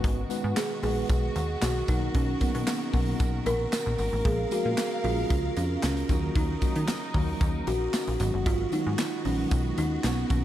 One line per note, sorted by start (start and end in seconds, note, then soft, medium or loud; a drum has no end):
0.00 4.21 B2 medium
0.00 4.21 D#3 medium
0.00 0.20 G#3 medium
0.00 1.86 G#3 medium
0.00 0.20 B3 medium
0.00 0.20 D#4 medium
0.00 0.20 F#4 medium
0.00 4.21 F#4 medium
0.00 0.21 B4 loud
0.04 0.25 G#1 loud
0.04 kick loud
0.04 closed hi-hat medium
0.30 0.58 G#3 loud
0.30 0.58 B3 medium
0.30 0.58 D#4 medium
0.30 0.58 F#4 medium
0.30 0.58 B4 loud
0.30 closed hi-hat medium
0.30 tambourine medium
0.44 0.54 G#2 loud
0.56 0.81 G#4 loud
0.56 snare loud
0.56 clap loud
0.56 closed hi-hat loud
0.56 tambourine medium
0.83 1.04 A#1 medium
0.83 1.38 G#3 medium
0.83 1.38 B3 medium
0.83 1.38 D#4 medium
0.83 1.39 F#4 medium
0.83 1.65 G#4 medium
0.83 1.39 B4 medium
0.83 open hi-hat medium
0.83 tambourine soft
1.09 1.30 B1 loud
1.09 kick loud
1.09 closed hi-hat loud
1.09 tambourine medium
1.36 1.57 D#2 medium
1.36 closed hi-hat medium
1.36 tambourine medium
1.62 1.83 B1 loud
1.62 1.89 F#4 loud
1.62 snare loud
1.62 clap medium
1.62 closed hi-hat loud
1.62 tambourine medium
1.88 2.09 B1 loud
1.88 2.31 F#3 medium
1.88 2.31 A#3 medium
1.88 2.31 B3 medium
1.88 2.31 D#4 medium
1.88 2.16 D#4 loud
1.88 8.16 A#4 medium
1.88 2.31 A#4 medium
1.88 kick loud
1.88 closed hi-hat medium
1.88 tambourine medium
2.15 2.36 B1 loud
2.15 2.42 C#4 loud
2.15 kick loud
2.15 closed hi-hat medium
2.40 2.68 F#3 medium
2.40 2.68 A#3 medium
2.40 2.69 B3 medium
2.40 2.66 B3 medium
2.40 2.69 D#4 medium
2.40 2.69 A#4 medium
2.40 kick loud
2.40 closed hi-hat medium
2.40 tambourine medium
2.55 2.65 B2 loud
2.55 closed hi-hat medium
2.67 3.49 A#3 medium
2.67 snare loud
2.67 clap loud
2.67 closed hi-hat loud
2.67 tambourine medium
2.93 3.14 B1 medium
2.93 3.49 B2 medium
2.93 3.49 F#3 medium
2.93 3.49 A#3 medium
2.93 3.49 D#4 medium
2.93 3.49 A#4 medium
2.93 kick medium
2.93 open hi-hat medium
2.93 tambourine soft
3.20 3.41 B1 loud
3.20 kick loud
3.20 closed hi-hat loud
3.20 tambourine medium
3.46 3.67 A#1 loud
3.46 4.28 A#4 loud
3.46 closed hi-hat medium
3.46 tambourine medium
3.73 snare loud
3.73 clap medium
3.73 closed hi-hat loud
3.73 tambourine medium
3.86 3.96 A#1 medium
3.98 4.10 G#1 loud
3.98 open hi-hat medium
3.98 tambourine medium
4.13 4.23 A1 medium
4.25 4.46 A#1 loud
4.25 8.16 C#3 medium
4.25 4.39 F3 medium
4.25 4.40 G#3 medium
4.25 6.08 G#3 medium
4.25 4.40 A#3 medium
4.25 4.40 C#4 medium
4.25 4.40 G#4 medium
4.25 4.52 G#4 loud
4.25 6.08 F5 loud
4.25 kick loud
4.25 closed hi-hat medium
4.51 4.79 F3 medium
4.51 4.79 G#3 medium
4.51 4.79 A#3 medium
4.51 4.79 C#4 medium
4.51 5.06 F#4 loud
4.51 4.79 G#4 medium
4.51 closed hi-hat medium
4.51 tambourine medium
4.66 4.75 A#2 loud
4.77 snare loud
4.77 clap loud
4.77 closed hi-hat loud
4.77 tambourine medium
5.03 5.25 A#1 loud
5.03 5.59 F3 medium
5.03 5.59 G#3 medium
5.03 5.59 A#3 medium
5.03 5.59 C#4 medium
5.03 5.29 F4 loud
5.03 5.60 G#4 medium
5.03 open hi-hat medium
5.30 5.51 C#2 medium
5.30 5.58 F4 loud
5.30 kick loud
5.30 closed hi-hat medium
5.30 tambourine medium
5.56 5.78 F2 loud
5.56 5.69 C#4 medium
5.56 closed hi-hat medium
5.56 tambourine medium
5.83 6.04 C#2 loud
5.83 6.37 C#4 medium
5.83 snare loud
5.83 clap medium
5.83 closed hi-hat loud
5.83 tambourine medium
5.97 closed hi-hat medium
6.09 6.30 D#2 loud
6.09 6.52 D#3 medium
6.09 6.52 F#3 medium
6.09 8.18 F#3 medium
6.09 6.52 A#3 medium
6.09 6.52 C#4 medium
6.09 8.18 D#4 medium
6.09 6.52 F#4 medium
6.09 kick loud
6.09 closed hi-hat medium
6.09 tambourine medium
6.35 6.56 D#2 loud
6.35 6.85 D#4 medium
6.35 kick loud
6.35 closed hi-hat medium
6.35 tambourine soft
6.61 6.89 D#3 medium
6.61 6.89 F#3 medium
6.61 6.90 A#3 medium
6.61 6.90 C#4 medium
6.61 6.90 F#4 medium
6.61 kick loud
6.61 closed hi-hat medium
6.61 tambourine medium
6.76 6.86 D#3 loud
6.76 closed hi-hat medium
6.88 snare loud
6.88 clap medium
6.88 closed hi-hat loud
6.88 tambourine medium
7.14 7.35 D#2 loud
7.14 7.70 D#3 medium
7.14 7.70 F#3 medium
7.14 7.70 A#3 medium
7.14 7.70 C#4 medium
7.14 7.70 F#4 medium
7.14 kick medium
7.14 open hi-hat medium
7.41 7.62 D#2 loud
7.41 kick loud
7.41 closed hi-hat loud
7.41 tambourine medium
7.67 7.88 A#1 medium
7.67 8.49 F#4 loud
7.67 closed hi-hat medium
7.67 tambourine soft
7.94 snare loud
7.94 clap medium
7.94 closed hi-hat loud
7.94 tambourine medium
8.08 8.17 A#1 medium
8.08 closed hi-hat medium
8.19 8.31 G#1 loud
8.19 8.62 D#3 medium
8.19 10.28 D#3 medium
8.19 8.62 F#3 medium
8.19 10.28 G#3 medium
8.19 8.62 G#3 medium
8.19 10.28 B3 medium
8.19 8.63 B3 medium
8.19 10.45 F#4 medium
8.19 8.63 F#4 medium
8.19 closed hi-hat medium
8.19 tambourine medium
8.34 8.44 G1 medium
8.46 8.67 G#1 loud
8.46 8.73 F4 loud
8.46 kick loud
8.46 closed hi-hat medium
8.46 tambourine soft
8.72 9.00 D#3 medium
8.72 9.00 F#3 medium
8.72 9.00 G#3 medium
8.72 9.00 B3 medium
8.72 9.22 D#4 loud
8.72 9.00 F#4 medium
8.72 closed hi-hat medium
8.72 tambourine medium
8.87 8.96 G#2 loud
8.98 snare loud
8.98 clap loud
8.98 closed hi-hat loud
8.98 tambourine medium
9.24 9.46 A#1 medium
9.24 9.80 D#3 medium
9.24 9.80 F#3 medium
9.24 9.80 G#3 medium
9.24 9.80 B3 medium
9.24 9.79 C#4 loud
9.24 9.81 F#4 medium
9.24 open hi-hat medium
9.51 9.72 B1 medium
9.51 kick loud
9.51 closed hi-hat loud
9.51 tambourine medium
9.78 9.99 D#2 medium
9.78 10.02 D#4 loud
9.78 closed hi-hat medium
9.78 tambourine medium
10.04 10.25 B1 loud
10.04 10.31 B3 loud
10.04 snare loud
10.04 clap medium
10.04 closed hi-hat loud
10.04 tambourine medium
10.30 10.45 B1 loud
10.30 10.45 B2 medium
10.30 10.45 D#3 medium
10.30 10.45 F#3 medium
10.30 10.45 A#3 medium
10.30 10.45 B3 medium
10.30 10.45 C#4 medium
10.30 10.45 F#4 medium
10.30 10.45 A#4 medium
10.30 kick loud
10.30 closed hi-hat medium
10.30 tambourine medium